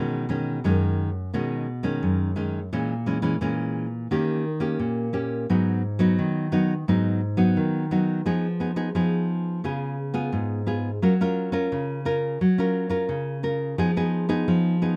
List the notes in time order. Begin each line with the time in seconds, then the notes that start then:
Already playing: B2 D#3 G#3 C#4
0.29 D#3 G#3 C#4
0.64 F#2 D#3 G#3 C#4
1.33 B2 D#3 G#3 C#4
1.83 D#3 G#3 C#4
2.03 F#2
2.36 D#3 G#3 C#4
2.73 A#2 E3 G#3 C#4
3.06 E3 G#3 C#4
3.22 E3 G#3 C#4
3.41 A#2 E3 G#3 C#4
4.11 D#3 A#3 C#4 G4
4.60 A#3 C#4 G4
4.79 A#2
5.13 A#3 C#4 G4
5.50 G#2 F#3 B3 D#4
5.99 F#3 B3 D#4
6.19 D#3
6.52 F#3 B3 D#4
6.88 G#2 F#3 B3 D#4
7.37 F#3 B3 D#4
7.57 D#3
7.91 F#3 B3 D#4
8.26 F3 B3 D#4 G#4
8.60 B3 D#4 G#4
8.76 B3 D#4 G#4
8.95 F3 B3 D#4 G#4
9.64 C#3 B3 F4 G#4
10.14 B3 F4 G#4
10.33 G#2
10.66 B3 F4 G#4
11.02 F#3 C#4 F4 A#4
11.21 C#4 F4 A#4
11.52 C#4 F4 A#4
11.72 C#3
12.05 C#4 F4 A#4
12.41 F#3
12.58 C#4 F4 A#4
12.89 C#4 F4 A#4
13.09 C#3
13.43 C#4 F4 A#4
13.78 F3 B3 D#4 G#4
13.97 B3 D#4 G#4
14.29 B3 D#4 G#4
14.48 F3
14.82 B3 D#4 G#4